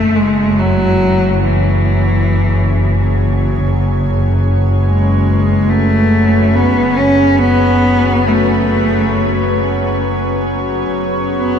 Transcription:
Already playing: double bass section F#1, ambient pad F#3 C#4 E4 G#4 C#5, harmonium F#3 C#5, cello A3
0.15 cello G#3
0.59 cello F#3
1.42 cello E3
3.93 ambient pad B4
4.86 cello G#3
5.70 cello A3
6.55 cello B3
6.97 cello C#4
7.39 cello B3
8.28 cello A3
10.94 double bass section F#1, ambient pad B3
11.31 ambient pad F#4
11.39 cello B3

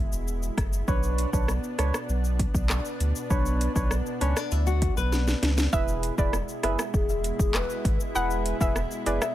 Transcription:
Already playing: analog synth pad B2 G#3 E4
0.12 sub bass E1, shaker
0.28 shaker
0.43 shaker
0.57 sub bass F#1, kick, cross-stick, closed hi-hat, shaker
0.73 shaker
0.88 sub bass B1, analog synth pad B2 B3 D4, synth stab D4 B4 C#5, kick, shaker
1.03 shaker
1.18 closed hi-hat, shaker
1.33 sub bass B1, synth stab D4 B4 C#5, kick, shaker
1.48 cross-stick, shaker
1.64 shaker
1.79 sub bass C#2, synth stab D4 B4 C#5, cross-stick, closed hi-hat, shaker
1.94 cross-stick, shaker
2.09 sub bass B1, shaker
2.24 shaker
2.39 kick, closed hi-hat, shaker
2.54 sub bass B1, kick, shaker
2.70 cross-stick, clap, shaker
2.85 shaker
3.00 sub bass D2, closed hi-hat, shaker
3.16 shaker
3.30 sub bass B1, synth stab D4 B4 C#5, kick, shaker
3.46 shaker
3.61 closed hi-hat, shaker
3.75 sub bass B1, synth stab D4 B4 C#5, kick, shaker
3.91 cross-stick, shaker
4.06 shaker
4.21 sub bass C#2, nylon-string guitar C#4, synth stab D4 B4 C#5, closed hi-hat, shaker
4.37 nylon-string guitar D4, cross-stick, shaker
4.51 sub bass D2, nylon-string guitar E4, shaker
4.67 nylon-string guitar F#4, shaker
4.82 kick, closed hi-hat, shaker
4.97 sub bass B1, nylon-string guitar B4, shaker
5.12 snare, shaker
5.28 snare, shaker
5.42 sub bass C#2, snare, closed hi-hat, shaker
5.58 snare, shaker
5.73 sub bass E1, analog synth pad B2 G#3 E4, synth stab E4 G#4 B4, synth pluck E5, kick, shaker
5.88 shaker
6.03 closed hi-hat, shaker
6.18 sub bass E1, synth stab E4 G#4 B4, synth pluck D5, kick, shaker
6.33 cross-stick, shaker
6.49 shaker
6.63 sub bass F#1, synth stab E4 G#4 B4, synth pluck E5, cross-stick, closed hi-hat, shaker
6.79 cross-stick, shaker
6.94 sub bass E1, soft synth lead G#4, kick, shaker
7.09 shaker
7.24 closed hi-hat, shaker
7.39 sub bass E1, kick, shaker
7.54 soft synth lead B4, cross-stick, clap, shaker
7.70 shaker
7.85 sub bass G#1, kick, closed hi-hat, shaker
8.00 shaker
8.15 sub bass E1, synth stab E4 G#4 B4, synth pluck F#5, shaker
8.30 shaker
8.46 closed hi-hat, shaker
8.60 sub bass E1, synth stab E4 G#4 B4, synth pluck E5, kick, shaker
8.76 cross-stick, shaker
8.91 shaker
9.06 sub bass F#1, synth stab E4 G#4 B4, synth pluck D5, closed hi-hat, shaker
9.22 synth pluck E5, cross-stick, shaker

